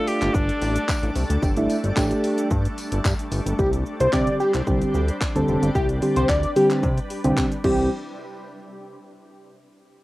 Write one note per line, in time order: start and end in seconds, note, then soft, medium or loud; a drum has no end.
0.00 3.55 G3 medium
0.00 0.32 A3 medium
0.00 3.55 A3 medium
0.00 0.33 D4 medium
0.00 3.55 D4 medium
0.00 0.33 F4 medium
0.07 0.36 G4 loud
0.07 open hi-hat medium
0.07 tambourine soft
0.07 shaker medium
0.22 0.30 G1 loud
0.22 clap medium
0.22 closed hi-hat medium
0.22 shaker medium
0.34 0.51 G1 loud
0.34 1.16 D4 loud
0.34 kick loud
0.34 shaker medium
0.49 closed hi-hat soft
0.49 shaker soft
0.62 0.78 A1 medium
0.62 open hi-hat medium
0.62 tambourine medium
0.62 shaker medium
0.76 closed hi-hat medium
0.76 shaker medium
0.89 kick loud
0.89 clap loud
0.89 tambourine medium
0.89 shaker medium
1.03 1.11 A1 loud
1.03 closed hi-hat medium
1.03 shaker medium
1.16 1.24 C2 loud
1.16 open hi-hat medium
1.16 tambourine medium
1.16 shaker medium
1.30 1.38 D2 medium
1.30 closed hi-hat medium
1.30 shaker medium
1.42 1.68 G1 loud
1.42 1.49 D4 loud
1.42 1.50 G4 loud
1.42 kick loud
1.42 tambourine soft
1.42 shaker medium
1.57 1.76 A3 medium
1.57 1.76 D4 medium
1.57 1.76 E4 loud
1.57 closed hi-hat medium
1.57 shaker medium
1.70 open hi-hat medium
1.70 tambourine medium
1.70 shaker medium
1.84 1.92 G1 medium
1.84 closed hi-hat medium
1.84 shaker medium
1.96 2.13 A1 medium
1.96 2.49 A3 medium
1.96 2.49 D4 medium
1.96 2.49 G4 loud
1.96 kick loud
1.96 clap loud
1.96 tambourine medium
1.96 shaker medium
2.11 closed hi-hat medium
2.11 shaker medium
2.24 open hi-hat medium
2.24 tambourine soft
2.24 shaker medium
2.38 closed hi-hat medium
2.38 shaker medium
2.51 2.67 G2 loud
2.51 kick loud
2.51 shaker medium
2.65 closed hi-hat soft
2.65 shaker medium
2.78 open hi-hat medium
2.78 tambourine medium
2.78 shaker medium
2.92 3.00 G1 medium
2.92 closed hi-hat medium
2.92 shaker medium
3.05 3.14 G2 loud
3.05 kick loud
3.05 clap loud
3.05 tambourine loud
3.05 shaker medium
3.19 closed hi-hat medium
3.19 shaker medium
3.32 3.40 G1 loud
3.32 open hi-hat medium
3.32 tambourine medium
3.32 shaker medium
3.46 3.54 G1 medium
3.46 closed hi-hat medium
3.46 shaker medium
3.59 3.84 C2 loud
3.59 7.60 G3 medium
3.59 5.73 C4 medium
3.59 7.60 D4 medium
3.59 3.71 G4 loud
3.59 kick loud
3.59 shaker medium
3.73 closed hi-hat medium
3.73 shaker medium
3.86 shaker medium
4.00 4.08 C2 loud
4.00 4.11 C5 medium
4.00 closed hi-hat medium
4.00 shaker medium
4.13 4.29 C3 loud
4.13 4.39 D3 medium
4.13 4.39 G3 medium
4.13 4.39 C4 medium
4.13 4.39 G4 medium
4.13 4.35 D5 medium
4.13 kick loud
4.13 clap loud
4.13 shaker medium
4.27 closed hi-hat medium
4.27 shaker medium
4.40 4.52 G4 medium
4.40 shaker medium
4.54 4.62 C2 medium
4.54 clap medium
4.54 closed hi-hat medium
4.54 shaker medium
4.67 4.83 C2 loud
4.67 5.00 D3 medium
4.67 5.00 G3 medium
4.67 5.00 C4 medium
4.67 5.00 G4 loud
4.67 kick loud
4.67 shaker medium
4.82 closed hi-hat soft
4.82 shaker soft
4.94 5.10 D2 medium
4.94 shaker medium
5.08 closed hi-hat medium
5.08 shaker medium
5.21 kick loud
5.21 clap loud
5.21 shaker medium
5.35 5.43 D2 medium
5.35 5.67 D3 medium
5.35 5.68 G3 medium
5.35 5.68 C4 medium
5.35 5.68 A4 loud
5.35 closed hi-hat medium
5.35 shaker medium
5.48 5.57 F1 loud
5.48 shaker medium
5.62 5.70 G1 medium
5.62 closed hi-hat medium
5.62 shaker medium
5.75 6.00 C2 loud
5.75 5.87 G4 loud
5.75 7.62 B4 medium
5.75 kick loud
5.75 shaker medium
5.89 closed hi-hat medium
5.89 shaker medium
6.02 6.28 D3 medium
6.02 6.28 G3 medium
6.02 6.28 C4 medium
6.02 6.28 G4 medium
6.02 open hi-hat medium
6.02 shaker medium
6.16 6.24 C2 medium
6.16 6.27 C5 medium
6.16 closed hi-hat medium
6.16 shaker medium
6.29 6.45 D2 loud
6.29 6.51 D5 medium
6.29 kick loud
6.29 clap loud
6.29 shaker medium
6.43 closed hi-hat medium
6.43 shaker medium
6.56 6.89 D3 medium
6.56 6.89 G3 medium
6.56 6.89 C4 medium
6.56 6.68 G4 medium
6.56 6.89 G4 medium
6.56 open hi-hat medium
6.56 shaker medium
6.70 clap medium
6.70 closed hi-hat medium
6.70 shaker medium
6.83 7.00 C3 loud
6.83 kick loud
6.83 shaker medium
6.98 closed hi-hat soft
6.98 shaker soft
7.10 open hi-hat medium
7.10 shaker medium
7.24 7.32 C2 medium
7.24 7.50 D3 loud
7.24 7.50 G3 medium
7.24 7.51 C4 medium
7.24 7.51 G4 loud
7.24 closed hi-hat medium
7.24 shaker medium
7.37 7.46 C3 loud
7.37 kick loud
7.37 clap loud
7.37 shaker medium
7.52 closed hi-hat medium
7.52 shaker medium
7.64 7.89 C2 loud
7.64 7.89 E3 medium
7.64 7.89 G3 medium
7.64 7.89 C4 medium
7.64 7.89 G4 loud
7.64 7.90 G4 medium
7.64 kick loud
7.64 crash medium